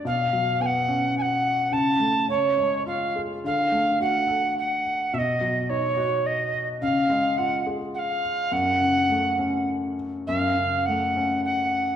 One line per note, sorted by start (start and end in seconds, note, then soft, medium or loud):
0.05 1.69 B2 medium
0.05 0.63 F5 medium
0.33 1.41 F#3 soft
0.60 1.69 B3 soft
0.60 0.67 G#5 medium
0.66 1.17 F#5 medium
0.88 1.70 C#4 soft
1.18 1.74 F#5 medium
1.18 1.23 G#5 medium
1.72 2.27 C#3 medium
1.72 2.29 A5 medium
2.00 2.28 A3 soft
2.29 3.41 C#3 soft
2.29 2.83 C#5 medium
2.57 3.42 G#3 soft
2.86 3.43 F4 soft
2.86 3.21 F5 medium
3.16 3.44 G#4 soft
3.44 5.10 D3 medium
3.44 3.99 F5 medium
3.72 4.83 A3 soft
4.00 5.10 F#4 soft
4.00 4.54 F#5 medium
4.28 5.11 A4 soft
4.58 5.15 F#5 medium
5.14 6.78 B2 medium
5.14 5.19 E5 medium
5.18 5.71 D#5 medium
5.41 6.50 F#3 soft
5.69 6.78 D#4 soft
5.69 6.28 C#5 medium
5.97 6.79 F#4 soft
6.26 6.68 D#5 medium
6.82 8.48 C#3 medium
6.82 7.39 F5 medium
7.10 8.20 G#3 soft
7.37 8.49 F4 soft
7.37 7.66 F#5 medium
7.67 8.49 G#4 soft
7.94 8.00 F#5 medium
7.99 8.54 F5 medium
8.52 10.24 F#2 medium
8.52 9.69 F#5 loud
8.81 9.95 C#3 soft
9.09 10.24 A3 soft
9.39 10.25 C#4 soft
10.27 11.96 F#2 medium
10.27 10.87 F5 medium
10.58 11.70 C#3 soft
10.86 11.96 A3 soft
10.86 11.43 F#5 medium
11.16 11.96 C#4 soft
11.44 11.96 F#5 medium